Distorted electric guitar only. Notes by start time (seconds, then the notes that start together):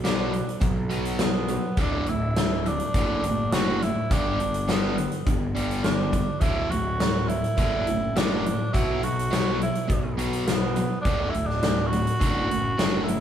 0.04 B2 F#3 B3
0.32 B2 F#3
0.61 B2 F#3
0.90 B2 F#3 B3
1.20 B2 F#3
1.49 B2 F#3
1.77 D2 A2 D3
2.08 D2 A2
2.37 D2 A2
2.66 D2 A2
2.95 D2 A2 D3
3.24 D2 A2
3.53 D2 A2 D3
3.82 D2 A2
4.11 G2 D3 G3
4.40 G2 D3
4.68 G2 D3 G3
4.96 G2 D3
5.26 G2 D3
5.55 G2 D3 G3
5.84 G2 D3
6.13 G2 D3
6.40 D2 A2 D3
6.71 D2 A2
7.00 D2 A2
7.28 D2 A2
7.57 D2 A2 D3
7.86 D2 A2
8.16 D2 A2 D3
8.45 D2 A2
8.73 B2 F#3 B3
9.03 B2 F#3
9.31 B2 F#3 B3
9.60 B2 F#3
9.88 B2 F#3
10.18 B2 F#3 B3
10.47 B2 F#3
10.76 B2 F#3
11.06 D2 A2 D3
11.34 D2 A2
11.64 D2 A2
11.93 D2 A2
12.19 D2 A2 D3
12.49 D2 A2
12.77 D2 A2 D3
13.08 D2 A2